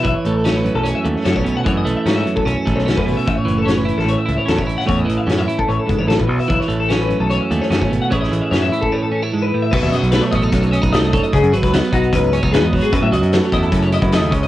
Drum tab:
CC |----------------|----------------|----------------|----------------|
HH |x-x-x-x-x-x-x-x-|x-x-x-x-x-x-x-o-|x-x-x-x-x-x-x-x-|x-x-x-x-x-x-x-o-|
SD |----o------oo---|----oo-----oo---|----o--o----o--o|----o-------o---|
BD |o------------o--|o------o--o--o--|o------------o--|o------o--o--o--|

CC |----------------|----------------|x---------------|----------------|
HH |x-x-x-x-x-x-x-x-|x-x-x-x---------|--xxxxxxxxxxxxxx|xxxxxxxxxxxxx-ox|
SD |-o--oo-----oo---|-o--oo----------|----o-------o---|---oo-------o---|
BD |o------------o--|o------o--------|o-----o-o--o--o-|o--o--o-o--o--o-|

CC |----------------|
HH |x-xxxxxxxxxxxxxx|
SD |----o-------o---|
BD |o-----o-o--o--o-|